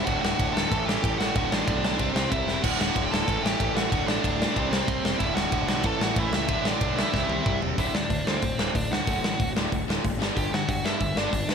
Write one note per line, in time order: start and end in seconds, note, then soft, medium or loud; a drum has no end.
0.05 0.17 D1 loud
0.05 0.23 D2 loud
0.05 0.70 D2 loud
0.05 0.22 A2 loud
0.05 0.69 A2 loud
0.05 0.21 D3 loud
0.05 0.21 F#4 medium
0.05 0.20 F#5 medium
0.05 kick loud
0.05 ride medium
0.10 0.72 D3 loud
0.21 0.33 D1 medium
0.21 0.37 D2 medium
0.21 0.38 A2 medium
0.21 0.38 D3 medium
0.21 0.52 F#4 medium
0.21 0.55 F#5 medium
0.21 snare loud
0.38 0.49 D1 loud
0.38 0.54 D2 medium
0.38 0.54 A2 medium
0.38 0.53 D3 medium
0.38 kick loud
0.38 ride medium
0.53 0.65 D1 medium
0.53 0.70 D2 medium
0.53 0.69 A2 loud
0.53 0.69 D3 loud
0.53 0.84 A4 medium
0.53 0.87 A5 loud
0.53 snare loud
0.70 0.81 A1 loud
0.70 1.34 A2 loud
0.70 0.86 A2 medium
0.70 0.85 E3 loud
0.70 1.35 E3 loud
0.70 0.85 A3 loud
0.70 1.35 A3 loud
0.70 kick loud
0.70 ride medium
0.85 0.97 A1 medium
0.85 1.02 A2 medium
0.85 1.03 E3 medium
0.85 1.03 A3 loud
0.85 1.16 G4 medium
0.85 1.18 G5 loud
0.85 snare loud
1.03 1.13 A1 loud
1.03 1.19 A2 loud
1.03 1.19 E3 loud
1.03 1.18 A3 loud
1.03 kick loud
1.03 ride medium
1.18 1.30 A1 medium
1.18 1.34 A2 medium
1.18 1.34 E3 medium
1.18 1.34 A3 medium
1.18 1.34 F#4 medium
1.18 1.33 F#5 medium
1.18 snare medium
1.35 1.45 D1 loud
1.35 1.51 D2 medium
1.35 1.98 D2 medium
1.35 1.50 A2 medium
1.35 1.99 A2 loud
1.35 1.49 D3 loud
1.35 2.00 D3 loud
1.35 1.50 F#4 medium
1.35 1.52 F#5 loud
1.35 kick loud
1.35 ride medium
1.51 1.61 A1 medium
1.51 1.65 D2 medium
1.51 1.66 A2 medium
1.51 1.67 D3 loud
1.51 1.66 D4 medium
1.51 1.65 D5 medium
1.51 snare loud
1.66 1.99 B1 loud
1.66 1.83 D2 medium
1.66 1.83 A2 medium
1.66 1.81 D3 medium
1.66 2.12 D4 medium
1.66 2.11 D5 loud
1.66 kick loud
1.66 ride medium
1.82 1.99 D2 medium
1.82 1.98 A2 loud
1.82 1.98 D3 loud
1.82 snare loud
1.99 2.09 C2 loud
1.99 2.14 C3 medium
1.99 2.63 C3 medium
1.99 2.14 G3 medium
1.99 2.64 G3 loud
1.99 2.13 C4 loud
1.99 2.64 C4 loud
1.99 kick loud
1.99 ride medium
2.14 2.25 C2 medium
2.14 2.29 C3 medium
2.14 2.30 G3 medium
2.14 2.30 C4 medium
2.14 2.30 C4 loud
2.14 2.31 C5 medium
2.14 snare loud
2.30 2.42 C2 loud
2.30 2.46 C3 loud
2.30 2.46 G3 medium
2.30 2.45 C4 medium
2.30 2.61 E4 medium
2.30 2.63 E5 medium
2.30 kick loud
2.30 ride medium
2.46 2.57 E1 medium
2.46 2.61 C3 medium
2.46 2.62 G3 loud
2.46 2.62 C4 loud
2.46 snare medium
2.62 2.73 D1 loud
2.62 2.78 D2 loud
2.62 3.26 D2 loud
2.62 2.78 A2 loud
2.62 3.26 A2 loud
2.62 2.77 D3 loud
2.62 2.78 F#4 medium
2.62 2.78 F#5 medium
2.62 kick loud
2.62 crash loud
2.66 3.28 D3 loud
2.79 2.89 D1 medium
2.79 2.94 D2 medium
2.79 2.94 A2 loud
2.79 2.95 D3 medium
2.79 3.03 F#4 medium
2.79 3.05 F#5 medium
2.79 snare loud
2.95 3.06 D1 medium
2.95 3.11 D2 medium
2.95 3.10 A2 medium
2.95 3.09 D3 medium
2.95 kick loud
2.95 ride medium
3.05 3.12 G5 medium
3.10 3.22 D1 medium
3.10 3.27 D2 medium
3.10 3.26 A2 loud
3.10 3.26 D3 medium
3.10 3.42 A4 medium
3.10 3.44 A5 loud
3.10 snare loud
3.27 3.38 A1 loud
3.27 3.90 A2 medium
3.27 3.43 A2 loud
3.27 3.42 E3 loud
3.27 3.91 E3 medium
3.27 3.41 A3 loud
3.27 3.92 A3 loud
3.27 kick loud
3.27 ride medium
3.42 3.54 A1 medium
3.42 3.57 A2 loud
3.42 3.58 E3 medium
3.42 3.59 A3 loud
3.42 3.74 G4 medium
3.42 3.73 G5 loud
3.42 snare loud
3.58 3.70 A1 loud
3.58 3.74 A2 medium
3.58 3.74 E3 loud
3.58 3.73 A3 loud
3.58 kick loud
3.58 ride medium
3.74 3.85 A1 loud
3.74 3.90 A2 loud
3.74 3.90 E3 medium
3.74 3.90 A3 loud
3.74 3.89 F#4 medium
3.74 3.89 F#5 medium
3.74 snare loud
3.90 4.02 D1 loud
3.90 4.06 D2 loud
3.90 4.55 D2 loud
3.90 4.06 A2 loud
3.90 4.55 A2 medium
3.90 4.05 D3 loud
3.90 4.56 D3 loud
3.90 4.06 F#4 medium
3.90 4.08 F#5 loud
3.90 kick loud
3.90 ride medium
4.06 4.18 A1 medium
4.06 4.21 D2 medium
4.06 4.22 A2 medium
4.06 4.22 D3 loud
4.06 4.21 D4 medium
4.06 4.20 D5 medium
4.06 snare loud
4.21 4.44 D1 medium
4.21 4.39 D2 medium
4.21 4.38 A2 medium
4.21 4.37 D3 medium
4.21 4.68 D4 medium
4.21 4.67 D5 loud
4.21 kick loud
4.21 ride medium
4.38 4.54 D2 medium
4.38 4.55 A2 loud
4.38 4.54 D3 loud
4.38 snare loud
4.55 4.66 C2 loud
4.55 4.70 C3 loud
4.55 5.19 C3 medium
4.55 4.69 G3 loud
4.55 5.20 G3 medium
4.55 4.68 C4 loud
4.55 5.21 C4 loud
4.55 kick loud
4.55 ride medium
4.69 4.81 C2 medium
4.69 4.84 C3 medium
4.69 4.84 G3 medium
4.69 4.86 C4 loud
4.69 5.16 C4 medium
4.69 5.17 C5 medium
4.69 snare loud
4.85 4.98 C2 loud
4.85 5.02 C3 medium
4.85 5.02 G3 medium
4.85 5.01 C4 loud
4.85 kick loud
4.85 ride medium
5.02 5.14 E1 medium
5.02 5.18 C3 medium
5.02 5.18 G3 loud
5.02 5.18 C4 loud
5.02 snare loud
5.18 5.30 D1 loud
5.18 5.34 D2 loud
5.18 5.83 D2 loud
5.18 5.34 A2 loud
5.18 5.82 A2 loud
5.18 5.33 D3 loud
5.18 5.35 E4 medium
5.18 5.35 E5 loud
5.18 kick loud
5.18 ride medium
5.23 5.85 D3 loud
5.34 5.46 D1 loud
5.34 5.49 D2 medium
5.34 5.50 A2 medium
5.34 5.51 D3 loud
5.34 5.66 F#4 medium
5.34 5.66 F#5 medium
5.34 snare loud
5.51 5.62 D1 loud
5.51 5.68 D2 medium
5.51 5.67 A2 loud
5.51 5.66 D3 medium
5.51 kick loud
5.51 ride medium
5.67 5.84 B1 medium
5.67 5.83 D2 medium
5.67 5.82 A2 loud
5.67 5.83 D3 loud
5.67 5.84 F#4 medium
5.67 5.85 F#5 medium
5.67 snare loud
5.83 5.94 A1 loud
5.83 6.00 A2 loud
5.83 6.47 A2 medium
5.83 5.99 E3 loud
5.83 6.48 E3 loud
5.83 5.98 A3 loud
5.83 6.49 A3 loud
5.83 6.00 A4 medium
5.83 6.02 A5 medium
5.83 kick loud
5.83 ride medium
5.99 6.10 A1 loud
5.99 6.14 A2 medium
5.99 6.15 E3 medium
5.99 6.16 A3 loud
5.99 6.16 F#4 medium
5.99 6.18 F#5 medium
5.99 snare loud
6.15 6.26 A1 loud
6.15 6.32 A2 medium
6.15 6.31 E3 loud
6.15 6.30 A3 loud
6.15 6.34 E5 loud
6.15 kick loud
6.15 ride medium
6.19 6.33 E4 medium
6.31 6.50 C#2 medium
6.31 6.48 A2 loud
6.31 6.47 E3 loud
6.31 6.47 A3 loud
6.31 snare loud
6.35 6.64 E4 medium
6.35 6.67 E5 medium
6.48 6.59 D1 loud
6.48 7.12 D2 medium
6.48 6.64 D2 loud
6.48 6.64 A2 loud
6.48 7.13 A2 loud
6.48 6.63 D3 loud
6.48 7.14 D3 loud
6.48 kick loud
6.48 ride medium
6.64 6.74 A1 medium
6.64 6.79 D2 medium
6.64 6.80 A2 medium
6.64 6.80 D3 loud
6.64 6.96 D4 medium
6.64 6.99 D5 medium
6.64 snare loud
6.80 7.01 B1 medium
6.80 6.96 D2 medium
6.80 6.96 A2 loud
6.80 6.95 D3 medium
6.80 kick loud
6.80 ride medium
6.96 7.12 D2 medium
6.96 7.12 A2 medium
6.96 7.12 D3 loud
6.96 7.58 E4 medium
6.96 7.58 E5 loud
6.96 snare loud
7.13 7.24 C2 medium
7.13 7.28 C3 loud
7.13 7.77 C3 medium
7.13 7.28 G3 loud
7.13 7.77 G3 loud
7.13 7.27 C4 loud
7.13 7.78 C4 loud
7.13 kick loud
7.13 snare medium
7.28 7.39 C2 medium
7.28 7.43 C3 medium
7.28 7.44 G3 loud
7.28 7.45 C4 loud
7.28 high tom medium
7.45 7.56 C2 loud
7.45 7.60 C3 medium
7.45 7.60 G3 medium
7.45 7.59 C4 loud
7.45 kick loud
7.45 mid tom loud
7.60 7.72 E1 medium
7.60 7.77 C3 medium
7.60 7.76 G3 loud
7.60 7.76 C4 loud
7.60 floor tom medium
7.78 7.88 D1 loud
7.78 7.93 D2 medium
7.78 7.93 A2 medium
7.78 7.94 D3 loud
7.78 7.93 E4 medium
7.78 7.95 E5 medium
7.78 kick loud
7.78 open hi-hat medium
7.93 8.04 D2 medium
7.93 8.08 D2 medium
7.93 8.09 A2 medium
7.93 8.23 D4 medium
7.93 8.27 D5 medium
7.93 snare loud
8.10 8.24 D2 medium
8.10 8.20 D2 medium
8.10 8.24 A2 medium
8.10 kick loud
8.10 open hi-hat medium
8.26 8.36 D2 medium
8.26 8.41 D2 medium
8.26 8.41 A2 medium
8.26 8.42 D3 medium
8.26 8.72 C4 medium
8.26 8.72 C5 medium
8.26 snare loud
8.42 8.53 D1 medium
8.42 8.57 D2 medium
8.42 8.57 A2 medium
8.42 kick loud
8.42 open hi-hat medium
8.58 8.68 D1 medium
8.58 8.73 D2 medium
8.58 8.74 A2 loud
8.58 8.74 D3 loud
8.58 snare loud
8.74 8.85 D1 medium
8.74 8.89 D2 medium
8.74 8.89 A2 medium
8.74 8.90 D4 medium
8.74 8.92 D5 medium
8.74 kick loud
8.74 open hi-hat medium
8.91 9.01 D2 medium
8.91 9.05 D2 medium
8.91 9.06 A2 medium
8.91 9.52 F#4 medium
8.91 9.52 F#5 loud
8.91 snare medium
9.07 9.17 F#1 medium
9.07 9.22 D2 medium
9.07 9.23 A2 medium
9.07 9.23 D3 loud
9.07 kick loud
9.07 open hi-hat medium
9.23 9.33 A1 medium
9.23 9.38 D2 medium
9.23 9.38 A2 medium
9.23 snare loud
9.40 9.49 D1 medium
9.40 9.54 D2 medium
9.40 9.54 A2 medium
9.40 kick loud
9.40 open hi-hat medium
9.55 9.66 D1 medium
9.55 9.70 D2 medium
9.55 9.71 A2 medium
9.55 9.71 D3 loud
9.55 snare loud
9.71 9.82 D1 medium
9.71 9.86 D2 medium
9.71 9.86 A2 medium
9.71 kick loud
9.71 open hi-hat medium
9.87 9.98 D1 medium
9.87 10.02 D2 medium
9.87 10.03 A2 loud
9.87 10.03 D3 loud
9.87 snare loud
10.03 10.19 F#1 loud
10.03 10.18 D2 medium
10.03 10.18 A2 medium
10.03 kick loud
10.03 open hi-hat medium
10.18 10.29 G1 medium
10.18 10.34 G2 medium
10.18 10.34 D3 loud
10.18 10.35 G3 loud
10.18 snare loud
10.35 10.47 G1 loud
10.35 10.51 G2 loud
10.35 10.51 D3 loud
10.35 10.51 G3 loud
10.35 10.51 G4 medium
10.35 10.54 G5 loud
10.35 kick loud
10.35 open hi-hat medium
10.52 10.66 G2 medium
10.52 10.62 G2 medium
10.52 10.67 D3 medium
10.52 10.68 F#4 medium
10.52 10.70 F#5 medium
10.52 snare loud
10.68 10.82 G2 medium
10.68 10.79 G2 medium
10.68 10.83 D3 medium
10.68 10.84 F#4 medium
10.68 10.85 F#5 loud
10.68 kick loud
10.68 open hi-hat medium
10.83 10.98 G2 medium
10.83 10.94 G2 medium
10.83 10.99 D3 medium
10.83 11.00 G3 medium
10.83 11.15 E4 medium
10.83 11.15 E5 loud
10.83 snare loud
11.00 11.11 G1 medium
11.00 11.15 G2 medium
11.00 11.15 D3 medium
11.00 kick loud
11.00 open hi-hat medium
11.16 11.26 G1 medium
11.16 11.32 G2 medium
11.16 11.32 D3 loud
11.16 11.32 G3 loud
11.16 11.48 D4 medium
11.16 11.50 D5 loud
11.16 snare loud
11.33 11.43 G1 medium
11.33 11.47 G2 medium
11.33 11.48 D3 medium
11.33 kick loud
11.33 open hi-hat medium
11.49 11.55 G2 medium
11.49 11.55 D3 medium
11.49 11.55 B3 medium
11.49 11.55 B4 medium
11.49 snare loud